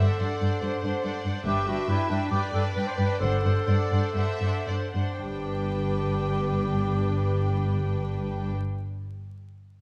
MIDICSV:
0, 0, Header, 1, 7, 480
1, 0, Start_track
1, 0, Key_signature, 1, "major"
1, 0, Tempo, 422238
1, 1659, Time_signature, 4, 2, 24, 8
1, 2631, Tempo, 446429
1, 3591, Tempo, 473560
1, 4551, Tempo, 524934
1, 9723, End_track
2, 0, Start_track
2, 0, Title_t, "Violin section"
2, 0, Program_c, 0, 48
2, 0, Note_on_c, 0, 78, 38
2, 225, Note_off_c, 0, 78, 0
2, 239, Note_on_c, 0, 78, 38
2, 445, Note_off_c, 0, 78, 0
2, 459, Note_on_c, 0, 78, 35
2, 683, Note_off_c, 0, 78, 0
2, 696, Note_on_c, 0, 78, 41
2, 916, Note_off_c, 0, 78, 0
2, 930, Note_on_c, 0, 78, 35
2, 1158, Note_off_c, 0, 78, 0
2, 1172, Note_on_c, 0, 78, 43
2, 1394, Note_off_c, 0, 78, 0
2, 1407, Note_on_c, 0, 78, 36
2, 1648, Note_off_c, 0, 78, 0
2, 1652, Note_on_c, 0, 79, 42
2, 1892, Note_off_c, 0, 79, 0
2, 1906, Note_on_c, 0, 79, 39
2, 2136, Note_off_c, 0, 79, 0
2, 2149, Note_on_c, 0, 79, 39
2, 2384, Note_off_c, 0, 79, 0
2, 2399, Note_on_c, 0, 79, 41
2, 2620, Note_off_c, 0, 79, 0
2, 2633, Note_on_c, 0, 79, 42
2, 2846, Note_off_c, 0, 79, 0
2, 2859, Note_on_c, 0, 79, 38
2, 3090, Note_off_c, 0, 79, 0
2, 3102, Note_on_c, 0, 79, 41
2, 3333, Note_off_c, 0, 79, 0
2, 3346, Note_on_c, 0, 79, 39
2, 3586, Note_off_c, 0, 79, 0
2, 3594, Note_on_c, 0, 78, 44
2, 3807, Note_off_c, 0, 78, 0
2, 3819, Note_on_c, 0, 78, 38
2, 4048, Note_off_c, 0, 78, 0
2, 4061, Note_on_c, 0, 78, 41
2, 4290, Note_off_c, 0, 78, 0
2, 4302, Note_on_c, 0, 78, 39
2, 4539, Note_off_c, 0, 78, 0
2, 4551, Note_on_c, 0, 78, 38
2, 4772, Note_off_c, 0, 78, 0
2, 4783, Note_on_c, 0, 78, 34
2, 5005, Note_off_c, 0, 78, 0
2, 5016, Note_on_c, 0, 78, 34
2, 5247, Note_off_c, 0, 78, 0
2, 5258, Note_on_c, 0, 78, 34
2, 5501, Note_off_c, 0, 78, 0
2, 5509, Note_on_c, 0, 79, 37
2, 8543, Note_off_c, 0, 79, 0
2, 9723, End_track
3, 0, Start_track
3, 0, Title_t, "Violin section"
3, 0, Program_c, 1, 48
3, 0, Note_on_c, 1, 76, 39
3, 225, Note_on_c, 1, 74, 43
3, 227, Note_off_c, 1, 76, 0
3, 700, Note_on_c, 1, 72, 44
3, 702, Note_off_c, 1, 74, 0
3, 1179, Note_off_c, 1, 72, 0
3, 1181, Note_on_c, 1, 74, 40
3, 1651, Note_on_c, 1, 76, 47
3, 1659, Note_off_c, 1, 74, 0
3, 2607, Note_off_c, 1, 76, 0
3, 2625, Note_on_c, 1, 74, 53
3, 3568, Note_off_c, 1, 74, 0
3, 3591, Note_on_c, 1, 72, 45
3, 4063, Note_off_c, 1, 72, 0
3, 4063, Note_on_c, 1, 74, 47
3, 4550, Note_on_c, 1, 76, 51
3, 4551, Note_off_c, 1, 74, 0
3, 5008, Note_off_c, 1, 76, 0
3, 5022, Note_on_c, 1, 74, 37
3, 5095, Note_off_c, 1, 74, 0
3, 5513, Note_on_c, 1, 71, 34
3, 8547, Note_off_c, 1, 71, 0
3, 9723, End_track
4, 0, Start_track
4, 0, Title_t, "Clarinet"
4, 0, Program_c, 2, 71
4, 0, Note_on_c, 2, 69, 54
4, 1389, Note_off_c, 2, 69, 0
4, 1653, Note_on_c, 2, 67, 61
4, 1880, Note_off_c, 2, 67, 0
4, 1909, Note_on_c, 2, 66, 55
4, 2147, Note_on_c, 2, 64, 62
4, 2164, Note_off_c, 2, 66, 0
4, 2386, Note_on_c, 2, 62, 57
4, 2403, Note_off_c, 2, 64, 0
4, 2622, Note_off_c, 2, 62, 0
4, 2629, Note_on_c, 2, 67, 61
4, 2735, Note_off_c, 2, 67, 0
4, 2869, Note_on_c, 2, 69, 58
4, 2975, Note_off_c, 2, 69, 0
4, 3104, Note_on_c, 2, 71, 63
4, 3228, Note_on_c, 2, 72, 59
4, 3244, Note_off_c, 2, 71, 0
4, 3335, Note_on_c, 2, 71, 70
4, 3351, Note_off_c, 2, 72, 0
4, 3570, Note_off_c, 2, 71, 0
4, 3576, Note_on_c, 2, 69, 64
4, 5226, Note_off_c, 2, 69, 0
4, 5510, Note_on_c, 2, 67, 43
4, 8545, Note_off_c, 2, 67, 0
4, 9723, End_track
5, 0, Start_track
5, 0, Title_t, "Viola section"
5, 0, Program_c, 3, 48
5, 0, Note_on_c, 3, 62, 37
5, 3, Note_on_c, 3, 72, 35
5, 214, Note_off_c, 3, 72, 0
5, 217, Note_off_c, 3, 62, 0
5, 227, Note_on_c, 3, 72, 37
5, 231, Note_on_c, 3, 62, 36
5, 460, Note_off_c, 3, 62, 0
5, 462, Note_off_c, 3, 72, 0
5, 473, Note_on_c, 3, 62, 35
5, 478, Note_on_c, 3, 72, 35
5, 697, Note_off_c, 3, 62, 0
5, 697, Note_off_c, 3, 72, 0
5, 710, Note_on_c, 3, 62, 40
5, 711, Note_on_c, 3, 72, 44
5, 932, Note_off_c, 3, 62, 0
5, 933, Note_off_c, 3, 72, 0
5, 946, Note_on_c, 3, 62, 38
5, 947, Note_on_c, 3, 72, 38
5, 1169, Note_off_c, 3, 62, 0
5, 1171, Note_off_c, 3, 72, 0
5, 1182, Note_on_c, 3, 62, 37
5, 1185, Note_on_c, 3, 72, 36
5, 1405, Note_off_c, 3, 62, 0
5, 1405, Note_off_c, 3, 72, 0
5, 1418, Note_on_c, 3, 72, 35
5, 1419, Note_on_c, 3, 62, 36
5, 1642, Note_off_c, 3, 62, 0
5, 1654, Note_off_c, 3, 72, 0
5, 1655, Note_on_c, 3, 62, 39
5, 1657, Note_on_c, 3, 71, 42
5, 1883, Note_off_c, 3, 62, 0
5, 1884, Note_off_c, 3, 71, 0
5, 1897, Note_on_c, 3, 62, 39
5, 1898, Note_on_c, 3, 71, 36
5, 2129, Note_off_c, 3, 71, 0
5, 2131, Note_off_c, 3, 62, 0
5, 2143, Note_on_c, 3, 71, 40
5, 2145, Note_on_c, 3, 62, 42
5, 2366, Note_off_c, 3, 62, 0
5, 2369, Note_off_c, 3, 71, 0
5, 2379, Note_on_c, 3, 62, 35
5, 2382, Note_on_c, 3, 71, 36
5, 2620, Note_off_c, 3, 62, 0
5, 2622, Note_off_c, 3, 71, 0
5, 2633, Note_on_c, 3, 62, 43
5, 2635, Note_on_c, 3, 71, 44
5, 2854, Note_off_c, 3, 62, 0
5, 2854, Note_off_c, 3, 71, 0
5, 2867, Note_on_c, 3, 62, 40
5, 2867, Note_on_c, 3, 71, 43
5, 3084, Note_off_c, 3, 62, 0
5, 3087, Note_off_c, 3, 71, 0
5, 3097, Note_on_c, 3, 62, 43
5, 3100, Note_on_c, 3, 71, 38
5, 3336, Note_off_c, 3, 71, 0
5, 3337, Note_off_c, 3, 62, 0
5, 3348, Note_on_c, 3, 62, 40
5, 3349, Note_on_c, 3, 71, 38
5, 3587, Note_off_c, 3, 62, 0
5, 3587, Note_off_c, 3, 71, 0
5, 3595, Note_on_c, 3, 72, 45
5, 3597, Note_on_c, 3, 62, 43
5, 3823, Note_off_c, 3, 72, 0
5, 3825, Note_off_c, 3, 62, 0
5, 3834, Note_on_c, 3, 72, 43
5, 3836, Note_on_c, 3, 62, 40
5, 4056, Note_off_c, 3, 72, 0
5, 4059, Note_off_c, 3, 62, 0
5, 4068, Note_on_c, 3, 72, 42
5, 4071, Note_on_c, 3, 62, 39
5, 4301, Note_off_c, 3, 72, 0
5, 4303, Note_off_c, 3, 62, 0
5, 4317, Note_on_c, 3, 62, 37
5, 4318, Note_on_c, 3, 72, 37
5, 4546, Note_off_c, 3, 62, 0
5, 4547, Note_off_c, 3, 72, 0
5, 4557, Note_on_c, 3, 62, 40
5, 4558, Note_on_c, 3, 72, 42
5, 4777, Note_off_c, 3, 62, 0
5, 4777, Note_off_c, 3, 72, 0
5, 4788, Note_on_c, 3, 62, 39
5, 4788, Note_on_c, 3, 72, 39
5, 5017, Note_off_c, 3, 62, 0
5, 5017, Note_off_c, 3, 72, 0
5, 5026, Note_on_c, 3, 72, 31
5, 5028, Note_on_c, 3, 62, 32
5, 5259, Note_off_c, 3, 72, 0
5, 5262, Note_off_c, 3, 62, 0
5, 5270, Note_on_c, 3, 72, 32
5, 5273, Note_on_c, 3, 62, 31
5, 5501, Note_off_c, 3, 62, 0
5, 5507, Note_off_c, 3, 72, 0
5, 5512, Note_on_c, 3, 62, 35
5, 8546, Note_off_c, 3, 62, 0
5, 9723, End_track
6, 0, Start_track
6, 0, Title_t, "Cello section"
6, 0, Program_c, 4, 48
6, 224, Note_on_c, 4, 43, 41
6, 315, Note_off_c, 4, 43, 0
6, 464, Note_on_c, 4, 43, 43
6, 555, Note_off_c, 4, 43, 0
6, 708, Note_on_c, 4, 43, 43
6, 799, Note_off_c, 4, 43, 0
6, 942, Note_on_c, 4, 43, 44
6, 1033, Note_off_c, 4, 43, 0
6, 1180, Note_on_c, 4, 43, 41
6, 1271, Note_off_c, 4, 43, 0
6, 1418, Note_on_c, 4, 43, 40
6, 1509, Note_off_c, 4, 43, 0
6, 1656, Note_on_c, 4, 43, 45
6, 1747, Note_off_c, 4, 43, 0
6, 1901, Note_on_c, 4, 43, 46
6, 1992, Note_off_c, 4, 43, 0
6, 2136, Note_on_c, 4, 43, 45
6, 2227, Note_off_c, 4, 43, 0
6, 2384, Note_on_c, 4, 43, 43
6, 2475, Note_off_c, 4, 43, 0
6, 2629, Note_on_c, 4, 43, 50
6, 2716, Note_off_c, 4, 43, 0
6, 2865, Note_on_c, 4, 43, 45
6, 2951, Note_off_c, 4, 43, 0
6, 3103, Note_on_c, 4, 43, 45
6, 3189, Note_off_c, 4, 43, 0
6, 3341, Note_on_c, 4, 43, 46
6, 3427, Note_off_c, 4, 43, 0
6, 3589, Note_on_c, 4, 43, 47
6, 3670, Note_off_c, 4, 43, 0
6, 3825, Note_on_c, 4, 43, 49
6, 3906, Note_off_c, 4, 43, 0
6, 4064, Note_on_c, 4, 43, 51
6, 4145, Note_off_c, 4, 43, 0
6, 4303, Note_on_c, 4, 43, 42
6, 4384, Note_off_c, 4, 43, 0
6, 4549, Note_on_c, 4, 43, 48
6, 4622, Note_off_c, 4, 43, 0
6, 4784, Note_on_c, 4, 43, 40
6, 4857, Note_off_c, 4, 43, 0
6, 5018, Note_on_c, 4, 43, 38
6, 5092, Note_off_c, 4, 43, 0
6, 5265, Note_on_c, 4, 43, 35
6, 5338, Note_off_c, 4, 43, 0
6, 5509, Note_on_c, 4, 43, 40
6, 8543, Note_off_c, 4, 43, 0
6, 9723, End_track
7, 0, Start_track
7, 0, Title_t, "Double bass section"
7, 0, Program_c, 5, 48
7, 1662, Note_on_c, 5, 31, 43
7, 1885, Note_off_c, 5, 31, 0
7, 3597, Note_on_c, 5, 31, 50
7, 3813, Note_off_c, 5, 31, 0
7, 5510, Note_on_c, 5, 31, 39
7, 8545, Note_off_c, 5, 31, 0
7, 9723, End_track
0, 0, End_of_file